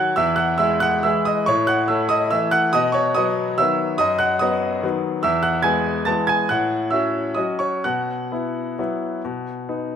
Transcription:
0.00 0.13 D#3 soft
0.00 0.14 F#3 soft
0.00 0.14 F#4 medium
0.00 0.16 F#5 medium
0.00 0.17 F#6 loud
0.16 0.59 E2 medium
0.16 0.37 E5 medium
0.16 0.38 E6 loud
0.36 0.58 F#5 medium
0.36 0.59 F#6 medium
0.58 1.00 G#3 medium
0.58 1.00 E4 medium
0.58 0.80 E5 medium
0.58 0.81 E6 medium
0.80 1.03 F#5 medium
0.80 1.04 F#6 loud
1.03 1.44 E3 medium
1.03 1.44 G#3 soft
1.03 1.45 E4 soft
1.03 1.25 E5 medium
1.03 1.26 E6 medium
1.25 1.47 D#5 medium
1.25 1.47 D#6 medium
1.46 1.89 A2 medium
1.46 1.68 C#5 medium
1.46 1.68 C#6 loud
1.67 1.88 F#5 medium
1.67 1.89 F#6 loud
1.88 2.28 A3 medium
1.88 2.29 E4 medium
1.88 2.09 E5 medium
1.88 2.10 E6 medium
2.09 2.31 D#5 medium
2.09 2.32 D#6 loud
2.31 2.70 E3 soft
2.31 2.71 A3 medium
2.31 2.70 E4 medium
2.31 2.52 E5 medium
2.31 2.53 E6 medium
2.51 2.72 F#5 medium
2.51 2.73 F#6 loud
2.73 3.15 B2 medium
2.73 2.93 D#5 medium
2.73 2.94 D#6 loud
2.92 3.14 C#5 medium
2.92 3.15 C#6 medium
3.15 3.55 F#3 soft
3.15 3.56 B3 medium
3.15 3.56 D#5 medium
3.15 3.58 D#6 loud
3.58 3.96 D#3 soft
3.58 3.97 F#3 medium
3.58 3.97 B3 medium
3.58 3.97 E5 medium
3.58 4.00 E6 medium
3.98 4.39 F#2 medium
3.98 4.18 D#5 medium
3.98 4.19 D#6 loud
4.19 4.39 F#5 medium
4.19 4.40 F#6 medium
4.39 4.80 F#3 medium
4.39 4.80 B3 medium
4.39 4.80 D#5 medium
4.39 4.82 D#6 medium
4.83 5.20 D#3 medium
4.83 5.21 F#3 soft
4.83 5.21 B3 medium
5.23 5.63 E2 medium
5.23 5.43 E5 medium
5.23 5.44 E6 loud
5.43 5.63 F#5 medium
5.43 5.64 F#6 medium
5.63 6.03 G#3 medium
5.63 6.03 B3 medium
5.63 6.04 G#5 medium
5.63 6.06 G#6 loud
6.05 6.46 E3 soft
6.05 6.46 G#3 soft
6.05 6.46 B3 medium
6.05 6.27 A5 medium
6.05 6.28 A6 medium
6.27 6.48 G#5 medium
6.27 6.49 G#6 loud
6.49 6.91 A2 medium
6.49 6.89 F#5 medium
6.49 6.91 F#6 medium
6.91 7.33 C#4 soft
6.91 7.33 F#4 soft
6.91 7.33 E5 medium
6.91 7.35 E6 medium
7.35 7.80 F#3 soft
7.35 7.81 C#4 soft
7.35 7.81 F#4 soft
7.35 7.58 D#5 medium
7.35 7.59 D#6 medium
7.59 7.83 C#5 medium
7.59 7.84 C#6 medium
7.84 8.30 B2 medium
7.84 9.96 F#5 medium
7.84 9.96 F#6 medium
8.32 8.75 B3 soft
8.32 8.75 E4 soft
8.79 9.21 F#3 soft
8.79 9.21 B3 soft
8.79 9.21 E4 soft
9.25 9.68 B2 medium
9.69 9.96 B3 soft
9.69 9.96 D#4 soft

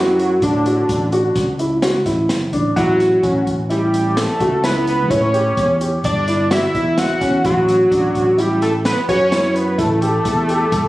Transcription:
0.00 0.42 F#2 medium
0.00 0.27 E4 medium
0.00 0.42 F#4 medium
0.19 closed hi-hat medium
0.42 0.82 A2 medium
0.42 1.32 D4 medium
0.42 0.58 D4 medium
0.42 kick loud
0.42 closed hi-hat medium
0.66 0.97 F#4 medium
0.66 closed hi-hat medium
0.89 1.28 A1 medium
0.89 kick medium
0.89 closed hi-hat medium
1.12 1.44 F#4 medium
1.12 closed hi-hat medium
1.35 1.95 C#2 medium
1.35 kick medium
1.35 snare soft
1.35 closed hi-hat medium
1.59 1.75 E4 medium
1.59 closed hi-hat medium
1.82 1.99 F#4 medium
1.82 snare medium
1.82 closed hi-hat medium
2.06 2.26 A1 medium
2.06 2.37 E4 medium
2.06 kick medium
2.06 snare soft
2.06 closed hi-hat medium
2.29 2.51 F#1 medium
2.29 snare medium
2.29 closed hi-hat medium
2.53 2.74 A1 medium
2.53 2.69 D4 medium
2.53 kick medium
2.53 closed hi-hat medium
2.76 3.16 A1 medium
2.76 3.08 E4 medium
2.76 3.43 F#4 loud
2.76 kick medium
2.76 closed hi-hat medium
3.00 snare soft
3.00 closed hi-hat soft
3.23 3.43 A1 medium
3.23 3.55 C#4 medium
3.23 kick medium
3.23 closed hi-hat medium
3.47 4.25 A1 medium
3.47 kick medium
3.47 closed hi-hat medium
3.70 4.01 E4 medium
3.70 4.19 G4 medium
3.70 closed hi-hat medium
3.94 closed hi-hat medium
4.17 4.64 A4 medium
4.17 snare loud
4.17 closed hi-hat medium
4.40 5.11 C#2 medium
4.40 4.56 F#4 medium
4.40 kick medium
4.40 closed hi-hat medium
4.64 4.95 E4 medium
4.64 5.12 B4 medium
4.64 snare medium
4.64 closed hi-hat medium
4.87 closed hi-hat medium
5.10 5.50 A2 medium
5.10 5.26 E4 medium
5.10 5.81 C#5 medium
5.10 kick medium
5.10 closed hi-hat medium
5.33 5.65 G4 medium
5.33 closed hi-hat medium
5.57 5.96 E2 medium
5.57 kick loud
5.57 closed hi-hat medium
5.81 6.12 G4 medium
5.81 closed hi-hat medium
6.04 6.63 G1 medium
6.04 6.48 D5 loud
6.04 kick loud
6.04 closed hi-hat medium
6.28 6.43 E4 medium
6.28 snare soft
6.28 closed hi-hat soft
6.51 6.66 F#4 medium
6.51 7.00 E5 loud
6.51 snare loud
6.51 closed hi-hat medium
6.74 7.14 E2 medium
6.74 7.06 E4 medium
6.74 kick medium
6.74 closed hi-hat medium
6.98 7.45 F#5 loud
6.98 snare medium
6.98 closed hi-hat medium
7.21 7.41 E2 medium
7.21 7.37 C#4 medium
7.21 kick medium
7.21 snare soft
7.21 closed hi-hat medium
7.44 7.84 A1 medium
7.44 7.76 F#4 medium
7.44 8.40 F#4 medium
7.44 kick loud
7.44 closed hi-hat medium
7.68 closed hi-hat medium
7.91 8.11 A1 medium
7.91 8.22 D4 medium
7.91 kick medium
7.91 closed hi-hat medium
8.15 8.93 A1 medium
8.15 kick medium
8.15 closed hi-hat medium
8.38 8.69 E4 medium
8.38 8.62 G4 medium
8.38 closed hi-hat medium
8.62 8.73 A4 medium
8.62 closed hi-hat medium
8.85 9.07 B4 loud
8.85 snare loud
8.85 closed hi-hat medium
9.09 9.80 F#2 medium
9.09 9.24 F#4 medium
9.09 9.56 C#5 medium
9.09 kick medium
9.09 closed hi-hat medium
9.32 9.63 E4 medium
9.32 snare loud
9.32 closed hi-hat medium
9.55 9.80 B4 medium
9.55 closed hi-hat medium
9.78 10.18 A1 medium
9.78 9.94 E4 medium
9.78 10.88 A4 medium
9.78 kick medium
9.78 closed hi-hat medium
10.02 10.33 G4 medium
10.02 closed hi-hat medium
10.25 10.64 E2 medium
10.25 kick medium
10.25 closed hi-hat medium
10.49 10.80 G4 medium
10.49 closed hi-hat medium
10.72 10.88 G1 medium
10.72 kick medium
10.72 closed hi-hat medium

